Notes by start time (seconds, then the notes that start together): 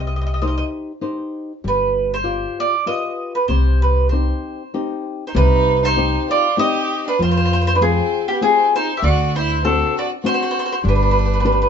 Already playing: C2 C3
0.07 D#5
0.16 D#5
0.21 D#5
0.27 D#5
0.34 D#5
0.42 D#4 G4 C5 D#5
0.48 D#5
0.58 D#5
1.01 D#4 G4 C5
1.64 G1 G3 B4
2.14 C5
2.24 F4 G4 D5
2.60 D5
2.86 F4 G4 B4 D#5
3.35 B4
3.48 C2 C3 C5
3.82 B4
4.09 C4 D#4 G4 C5
4.74 C4 D#4 G4
5.27 D#4 C5
5.35 C2 C3 D#4 B4
5.82 D#4 C5
5.96 C4 D#4 G4
6.30 F4 D5
6.57 C4 D#4 G4 D#5
7.07 D4 B4
7.19 F2 F3 F4 C5
7.31 C5
7.37 C5
7.45 C5
7.53 C5
7.62 C5
7.67 C5
7.75 D4 B4
7.81 C4 F4 G#4
8.28 G4
8.33 B3
8.41 C4 F4 G#4
8.45 C4
8.76 D#4 C5
8.97 G4 E5
9.02 D2 D3 F#4 D5
9.36 E4 C5
9.65 C4 D4 F#4 A4
9.97 F#4 D5
10.24 C4 D4 F#4 C5
10.34 C5
10.43 C5
10.51 C5
10.59 C5
10.66 C5
10.72 C5
10.84 G1 G3 D4
10.89 B4
10.95 B4
11.02 B4
11.11 B4
11.19 B4
11.26 B4
11.33 B4
11.40 B4
11.44 D4 G4 B4
11.52 B4
11.62 B4